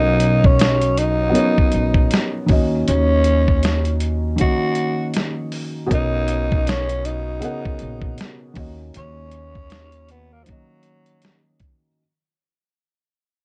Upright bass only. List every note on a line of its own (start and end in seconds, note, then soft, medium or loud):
0.00 1.32 B1 medium
1.74 2.08 A#1 medium
2.50 2.84 D#2 medium
2.88 4.36 D#2 loud
5.92 7.39 B1 loud
7.82 8.16 A#1 medium
8.57 8.91 D#2 loud
8.96 10.43 D#2 loud